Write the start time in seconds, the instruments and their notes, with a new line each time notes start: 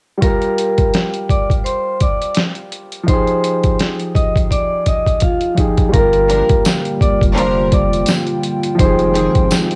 0.17 grand piano G3 F4
0.22 grand piano G4, vibraphone A#4 A#5, kick, closed hi-hat
0.27 grand piano A#4
0.42 closed hi-hat
0.58 closed hi-hat
0.78 kick, closed hi-hat
0.94 snare, closed hi-hat
1.14 closed hi-hat
1.29 vibraphone D5 D6, kick, closed hi-hat
1.50 kick, closed hi-hat
1.64 vibraphone C5 C6, closed hi-hat
2.00 vibraphone D5 D6, kick, closed hi-hat
2.22 closed hi-hat
2.35 snare, closed hi-hat
2.55 closed hi-hat
2.72 closed hi-hat
2.92 closed hi-hat
3.03 grand piano F3 D#4
3.08 grand piano G4, vibraphone C5 C6, kick, closed hi-hat
3.13 grand piano G#4
3.27 closed hi-hat
3.44 closed hi-hat
3.64 kick, closed hi-hat
3.79 snare, closed hi-hat
4.00 closed hi-hat
4.15 vibraphone D#5 D#6, kick, closed hi-hat
4.36 kick, closed hi-hat
4.51 vibraphone D5 D6, kick, closed hi-hat
4.86 vibraphone D#5 D#6, kick, closed hi-hat
5.07 kick, closed hi-hat
5.20 vibraphone F4 F5, kick, closed hi-hat
5.41 closed hi-hat
5.55 grand piano F3 D#4 G4, kick, closed hi-hat
5.59 grand piano G#4
5.78 kick, closed hi-hat
5.89 grand piano G3 F4
5.93 sub bass G1, analog synth pad D3 G3 A#3 F4 G5, grand piano G4, vibraphone A#4 A#5, kick, closed hi-hat
5.99 grand piano A#4
6.13 closed hi-hat
6.29 string section F3 D4 A#4, closed hi-hat
6.49 kick, closed hi-hat
6.65 snare, closed hi-hat, tambourine
6.85 closed hi-hat
7.01 vibraphone D5 D6, kick, closed hi-hat
7.21 sub bass F1, kick, closed hi-hat
7.35 string section F3 D4 A#4, vibraphone C5 C6, closed hi-hat
7.72 vibraphone D5 D6, kick, closed hi-hat
7.93 closed hi-hat
8.06 snare, closed hi-hat, tambourine
8.27 closed hi-hat
8.43 closed hi-hat
8.63 closed hi-hat
8.75 grand piano F3 D#4
8.79 sub bass F1, analog synth pad D#3 G#3 C4, grand piano G4, vibraphone C5 C6, kick, closed hi-hat
8.85 grand piano G#4
8.99 closed hi-hat
9.14 string section D#3 C4 G#4, closed hi-hat
9.35 kick, closed hi-hat
9.51 snare, closed hi-hat, tambourine
9.71 closed hi-hat